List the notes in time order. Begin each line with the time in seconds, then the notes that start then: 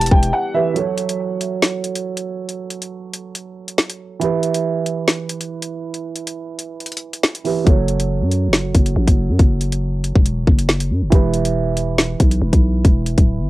Already playing: E1 E3 G3 B3 E4 G4 B4 A5
0.01 closed hi-hat
0.06 closed hi-hat
0.11 E1 G5, kick
0.23 closed hi-hat
0.33 F#5
0.54 E3 E4 G4 B4 E5
0.74 F#3 F#4 A4, closed hi-hat
0.79 C#5
0.98 closed hi-hat
1.09 closed hi-hat
1.41 closed hi-hat
1.62 snare
1.84 closed hi-hat
1.95 closed hi-hat
2.17 closed hi-hat
2.49 closed hi-hat
2.70 closed hi-hat
2.82 closed hi-hat
3.13 closed hi-hat
3.35 closed hi-hat
3.68 closed hi-hat
3.78 snare
3.90 closed hi-hat
4.20 E3 E4 G4, closed hi-hat
4.24 B4
4.43 closed hi-hat
4.54 closed hi-hat
4.86 closed hi-hat
5.08 snare
5.29 closed hi-hat
5.41 closed hi-hat
5.62 closed hi-hat
5.94 closed hi-hat
6.16 closed hi-hat
6.27 closed hi-hat
6.59 closed hi-hat
6.80 closed hi-hat
6.86 closed hi-hat
6.92 closed hi-hat
6.97 closed hi-hat
7.13 closed hi-hat
7.23 snare
7.35 closed hi-hat
7.44 E3 E4 G4 B4, open hi-hat
7.64 F#1 F#3 F#4 A4, kick, closed hi-hat
7.69 C#5
7.88 closed hi-hat
8.00 closed hi-hat
8.21 F#2
8.31 closed hi-hat
8.48 F#1
8.53 snare
8.75 F#1, kick, closed hi-hat
8.86 closed hi-hat
8.96 A1
9.08 F#1, kick, closed hi-hat
9.29 F#2
9.39 F#1, kick, closed hi-hat
9.61 closed hi-hat
9.72 closed hi-hat
10.04 closed hi-hat
10.16 E1, kick
10.26 closed hi-hat
10.47 F#1, kick
10.59 closed hi-hat
10.69 snare
10.80 closed hi-hat
10.90 F#2
11.02 F#1
11.10 E1 E3 E4 G4, kick, closed hi-hat
11.15 B4
11.34 closed hi-hat
11.45 closed hi-hat
11.77 closed hi-hat
11.98 snare
12.20 B1, kick, closed hi-hat
12.31 closed hi-hat
12.42 E1
12.53 B1, kick, closed hi-hat
12.85 E1, kick, closed hi-hat
13.06 closed hi-hat
13.18 D1, kick, closed hi-hat
13.39 G1